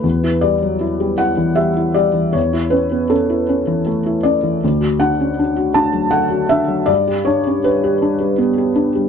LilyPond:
\new Staff \with { instrumentName = "Felt piano" } { \time 3/4 \key e \dorian \tempo 4 = 79 << { b'8 d''4 fis''8 e''8 d''8 | cis''8 b'8 a'4 r8 d''8~ | d''8 fis''4 a''8 fis''8 e''8 | d''8 cis''8 b'4 r4 | } \\ { e,16 e'16 g16 fis16 e'16 g16 e'16 e16 g16 e'16 g16 e16 | e,16 e'16 cis'16 b16 cis'16 e'16 cis'16 e16 a16 e'16 cis'16 e16 | d,16 fis'16 d'16 cis'16 d'16 fis'16 d'16 fis16 a16 fis'16 d'16 fis16 | g,16 g'16 d'16 cis'16 d'16 g'16 d'16 g16 b16 g'16 d'16 g16 | } >> }